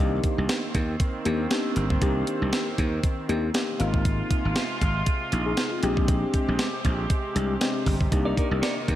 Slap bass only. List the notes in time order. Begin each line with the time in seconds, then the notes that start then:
0.00 C2
0.38 C2
0.75 D#2
1.26 D#2
1.76 G1
2.02 C2
2.42 C2
2.78 D#2
3.29 D#2
3.80 G#1
4.45 G#1
4.82 G#1
5.33 A#1
5.83 A#1
6.48 A#1
6.85 A#1
7.36 C2
7.86 G1
8.12 C2
8.51 C2
8.88 D#2